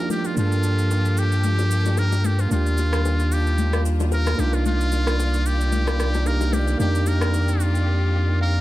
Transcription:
Already playing: F2 D#3 F3 A#3 D4 D#4 E4 F4 G4 D5
0.10 G4, high bongo, low conga, shaker
0.24 F4, high bongo, shaker
0.35 G2 F3 A#3 D4 F4 G4 A4, low conga, shaker
0.40 G#4
0.47 A4
0.52 shaker
0.63 low bongo, shaker
0.79 shaker
0.91 high bongo, shaker
1.05 shaker
1.17 G4, shaker
1.32 shaker
1.44 low conga, shaker
1.59 low bongo, shaker
1.71 shaker
1.85 low bongo, shaker
1.97 A#4, high bongo, shaker
2.12 low bongo, shaker
2.24 G4, high bongo, low conga, shaker
2.39 F4, high bongo, shaker
2.49 D#2 D#3 G3 A#3 D4 F4, low conga, shaker
2.53 F4 G4
2.66 shaker
2.78 low bongo, shaker
2.93 cross-stick, shaker
3.05 high bongo, shaker
3.20 shaker
3.32 G4, shaker
3.47 shaker
3.58 low conga, shaker
3.73 cross-stick, low bongo, shaker
3.85 shaker
4.00 low bongo, shaker
4.12 A#4, high bongo, shaker
4.27 cross-stick, low bongo, shaker
4.36 C2 D#3 A#3 D4 G4 D5, high bongo, low conga, shaker
4.40 D#4 F4
4.53 F4, high bongo, shaker
4.66 F4, low conga, shaker
4.81 shaker
4.92 low bongo, shaker
5.07 cross-stick, shaker
5.20 high bongo, shaker
5.34 shaker
5.46 G4, shaker
5.61 shaker
5.72 low conga, shaker
5.87 cross-stick, low bongo, shaker
6.00 cross-stick, shaker
6.14 low bongo, shaker
6.25 A#3 D4 D#4 G4 A#4, high bongo, shaker
6.41 low bongo, shaker
6.53 G4, high bongo, low conga, shaker
6.67 high bongo, shaker
6.77 F2 A#3 D4 D#4 G4, low conga, shaker
6.83 G4
6.95 shaker
7.06 A#4, low bongo, shaker
7.21 cross-stick, shaker
7.34 high bongo, shaker
7.48 shaker
7.60 F4, shaker
7.75 shaker
8.41 A#4 F5

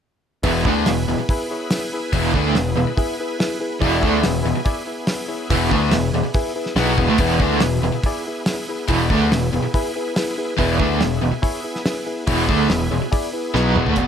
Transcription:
0.43 E1 E2 B2 E3 B3 E4 G#4 B4, kick, open hi-hat
0.65 D2 D3 A3 D4 E4 G#4 B4, kick
0.86 E1 E2 B2 E4 G#4 B4, snare, open hi-hat
1.07 E1 E2 B2 E4 G#4 B4
1.18 muted picked electric bass stroke, muted overdriven electric guitar stroke
1.29 E4 G#4 B4, kick, open hi-hat
1.51 E4 G#4 C#5
1.71 E4 G#4 B4, snare, open hi-hat
1.93 E4 G#4 B4
2.13 E1 E2 B2 E3 E4 G#4 B4, kick, open hi-hat
2.34 D2 D3 A3 D4 E4 G#4 B4, kick
2.55 E1 E2 B2 E4 G#4 B4, snare, open hi-hat
2.76 E1 E2 B2 E4 G#4 B4
2.88 muted overdriven electric guitar stroke
2.97 E4 G#4 B4, kick, open hi-hat
3.20 E4 G#4 B4
3.39 E4 G#4 B4, snare, open hi-hat
3.60 E4 G#4 B4
3.81 E1 E2 B2 E3 B3 E4 G#4 D5, kick, open hi-hat
4.00 D2 D3 A3 E4 G#4 D5, kick
4.04 D4
4.21 E1 E4 G#4 B4, snare, open hi-hat
4.25 E2 B2
4.42 E1 E2 B2 E4 G#4 B4
4.55 muted picked electric bass stroke, muted overdriven electric guitar stroke
4.65 E4 G#4 D5, kick, open hi-hat
4.86 E4 G#4 B4
5.07 E4 G#4 B4, snare, open hi-hat
5.28 E4 G#4 C#5
5.50 E1 E2 B2 E3 E4 G#4 B4, kick, open hi-hat
5.71 D2 D3 A3 D4 E4 G#4 B4, kick
5.91 E1 E2 B2 E4 G#4 B4, snare, open hi-hat
6.12 E1 E2 B2 E4 G#4 D5
6.24 muted overdriven electric guitar stroke, muted picked electric bass stroke
6.34 E4 G#4 B4, kick, open hi-hat
6.56 E4 G#4 B4
6.66 snare
6.76 B1 B2 F#3 B3 E4 G#4 B4, snare, open hi-hat
6.97 E1 E2 B2 E4 G#4 B4, kick
7.07 D2 D3 A3
7.18 E1 E2 B2 E3 B3 E4 G#4 B4, kick, open hi-hat
7.39 D2 D3 A3 D4 E4 G#4 B4, kick
7.60 E1 E2 B2 E4 G#4 B4, snare, open hi-hat
7.81 E1 E2 B2 G#4 B4
7.85 E4
7.93 muted overdriven electric guitar stroke, muted picked electric bass stroke
8.04 E4 G#4 D5, kick, open hi-hat
8.27 E4 G#4 B4
8.46 E4 G#4 B4, snare, open hi-hat
8.69 E4 G#4 B4
8.88 E1 E2 B2 E3 E4 G#4 B4, kick, open hi-hat
9.10 D2 D3 A3 D4 E4 G#4 B4, kick
9.31 E1 E2 B2 E4 G#4 B4, snare, open hi-hat
9.52 E1 E2 B2 E4 G#4 B4
9.63 muted overdriven electric guitar stroke
9.74 E4 G#4 B4, kick, open hi-hat
9.96 E4 G#4 B4
10.16 E4 G#4 B4, snare, open hi-hat
10.38 E4 G#4 B4
10.57 E1 E2 B2 E3 B3 E4 G#4 B4, kick, open hi-hat
10.78 D2 D3 A3 D4 E4 G#4 B4, kick
11.00 E1 E2 B2 E4 G#4 C#5, snare, open hi-hat
11.22 E1 E2 B2 E4 G#4 B4
11.32 muted overdriven electric guitar stroke, muted picked electric bass stroke
11.42 E4 G#4 C#5, kick, open hi-hat
11.64 E4 G#4 B4
11.76 snare
11.86 E4 G#4 B4, snare, open hi-hat
12.07 E4 G#4 B4
12.27 E1 E2 B2 E3 E4 G#4 C#5, kick, open hi-hat
12.48 D2 D3 A3 D4 E4 G#4 D5, kick
12.68 E1 E2 B2 E4 G#4 B4, snare, open hi-hat
12.90 E1 E2 B2 E4 G#4 C#5
13.02 muted picked electric bass stroke, muted overdriven electric guitar stroke
13.12 E4 G#4 D5, kick, open hi-hat
13.33 E4 G#4 B4
13.53 B1 B2 F#3 B3 E4 G#4 B4, snare
13.74 E1 E2 B2 E4 G#4 B4, mid tom
13.86 D2 D3 A3, floor tom
13.96 E1 E2 B2 E3 G#3 B3 E4, kick, closed hi-hat

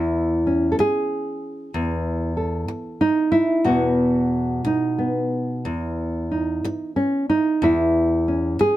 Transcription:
Already playing: E2 E4
0.47 C#4
0.72 A4
0.79 G#4, muted nylon-string guitar stroke
1.74 E2
2.37 A4
2.68 muted nylon-string guitar stroke
3.01 D#4
3.32 E4
3.64 E2 B2 B3 F#4
4.65 D#4, muted nylon-string guitar stroke
4.98 B3
5.65 E2
6.31 D#4
6.64 muted nylon-string guitar stroke
6.96 C#4
7.30 D#4
7.62 E2 E4
8.28 C#4
8.59 G#4, muted nylon-string guitar stroke

